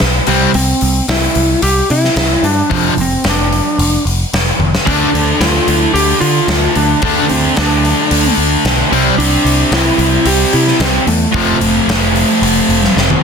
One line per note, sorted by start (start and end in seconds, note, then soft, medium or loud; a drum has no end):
0.00 0.19 B1 medium
0.00 snare medium
0.27 0.45 C2 medium
0.27 0.49 C3 medium
0.27 0.50 G3 loud
0.27 0.50 C4 loud
0.27 open hi-hat medium
0.54 0.72 C2 medium
0.54 1.05 C4 medium
0.54 open hi-hat medium
0.81 1.00 C2 medium
0.81 open hi-hat medium
1.08 1.26 C2 loud
1.08 1.62 E4 medium
1.08 snare loud
1.08 open hi-hat medium
1.35 1.53 C2 loud
1.35 open hi-hat medium
1.62 1.80 C2 medium
1.62 1.88 G4 loud
1.62 open hi-hat medium
1.90 2.08 C3 medium
1.90 2.46 E4 medium
1.90 open hi-hat medium
2.04 snare soft
2.16 2.34 C2 medium
2.16 snare loud
2.16 open hi-hat medium
2.43 2.61 G2 medium
2.43 3.00 D4 medium
2.43 open hi-hat medium
2.70 2.89 F1 medium
2.70 2.92 F2 medium
2.70 2.92 C3 medium
2.70 2.93 F3 loud
2.70 kick loud
2.70 open hi-hat medium
2.97 3.15 F1 medium
2.97 open hi-hat medium
3.01 3.27 C4 medium
3.24 3.60 F1 medium
3.24 snare loud
3.24 open hi-hat medium
3.29 4.04 D4 medium
3.53 open hi-hat medium
3.78 3.96 F1 medium
3.78 open hi-hat medium
4.05 4.23 F1 medium
4.05 open hi-hat soft
4.33 4.51 F1 medium
4.33 snare medium
4.33 open hi-hat medium
4.59 4.77 F1 medium
4.59 high tom medium
4.75 snare medium
4.86 5.05 D2 medium
4.86 5.09 D3 medium
4.86 5.09 A3 loud
4.86 5.42 D4 medium
4.86 5.09 D4 loud
4.86 kick loud
4.86 open hi-hat medium
5.14 5.31 D2 medium
5.14 open hi-hat medium
5.40 5.58 D2 medium
5.40 5.77 F4 medium
5.40 snare loud
5.40 open hi-hat medium
5.67 5.85 D2 loud
5.67 open hi-hat medium
5.77 5.91 E4 medium
5.94 6.12 D2 medium
5.94 6.20 G4 loud
5.94 open hi-hat medium
6.21 6.39 D3 medium
6.21 6.77 F4 medium
6.21 open hi-hat medium
6.48 6.66 D2 medium
6.48 snare medium
6.48 open hi-hat medium
6.76 6.93 D2 medium
6.76 7.29 D4 medium
6.76 open hi-hat medium
7.02 7.20 D2 medium
7.02 7.24 D3 medium
7.02 7.25 A3 loud
7.02 7.25 D4 loud
7.02 kick loud
7.02 open hi-hat medium
7.29 7.48 D2 medium
7.29 7.55 C4 medium
7.29 open hi-hat medium
7.57 7.93 D2 medium
7.57 8.34 D4 medium
7.57 snare loud
7.57 open hi-hat medium
7.85 open hi-hat medium
8.11 8.29 D2 loud
8.11 open hi-hat medium
8.37 8.55 D2 medium
8.37 open hi-hat soft
8.65 8.82 B1 medium
8.65 snare loud
8.65 open hi-hat medium
8.92 9.09 C2 medium
8.92 9.14 C3 medium
8.92 9.14 G3 medium
8.92 9.14 C4 medium
8.92 open hi-hat soft
9.18 9.36 C2 medium
9.18 9.73 D4 medium
9.18 open hi-hat medium
9.44 9.63 C2 medium
9.44 open hi-hat medium
9.71 9.89 C2 loud
9.71 10.29 E4 loud
9.71 snare loud
9.71 open hi-hat medium
9.98 10.16 C2 medium
9.98 open hi-hat soft
10.25 10.43 C2 loud
10.25 10.54 G4 loud
10.25 open hi-hat medium
10.53 10.71 C3 medium
10.53 10.81 E4 medium
10.53 open hi-hat medium
10.67 snare soft
10.80 10.98 C2 medium
10.80 11.07 C4 medium
10.80 snare medium
10.80 open hi-hat medium
11.07 11.25 E2 medium
11.07 12.92 A3 medium
11.07 open hi-hat medium
11.34 11.52 F1 loud
11.34 11.56 F2 medium
11.34 11.56 C3 medium
11.34 11.57 F3 medium
11.34 kick loud
11.34 open hi-hat medium
11.61 11.79 F1 medium
11.61 open hi-hat medium
11.87 12.23 F1 loud
11.87 snare loud
11.87 open hi-hat medium
12.16 open hi-hat medium
12.42 12.60 F1 loud
12.42 open hi-hat medium
12.69 12.86 F1 medium
12.69 open hi-hat medium
12.84 snare soft
12.96 13.14 F1 medium
12.96 snare medium
13.10 high tom medium